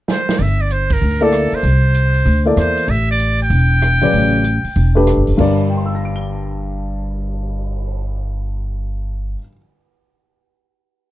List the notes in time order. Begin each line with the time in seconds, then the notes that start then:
0.08 C5, snare
0.29 snare
0.38 G1 D5 E5, open hi-hat
0.61 D5
0.70 C5, closed hi-hat
0.90 A#4, kick, ride
1.01 D2
1.21 A#3 E4 A4 D5
1.32 cross-stick, closed hi-hat
1.52 C5, muted upright bass stroke, open hi-hat
1.63 C2, open hi-hat
1.95 closed hi-hat
2.14 open hi-hat
2.25 D2, open hi-hat
2.46 A#3 E4 A4 D5
2.56 E2 C5, cross-stick, closed hi-hat
2.77 open hi-hat
2.88 A1 E5, open hi-hat
3.11 D5
3.20 closed hi-hat
3.39 G5, open hi-hat
3.50 E1, open hi-hat
3.82 cross-stick, closed hi-hat
4.01 A#1 C#3 F#3 B4 D5, open hi-hat
4.13 A1, open hi-hat
4.44 closed hi-hat
4.64 muted upright bass stroke, open hi-hat
4.76 E1, open hi-hat
4.95 A3 D4 G4 B4
5.07 cross-stick, closed hi-hat
5.17 G1
5.27 F#1, open hi-hat
5.37 G1 G2 G3 D4 A#4 D5, kick, crash
5.59 cymbal swell
5.70 G5
5.77 C6
5.86 E6
5.95 A#6
6.05 D7
6.16 G7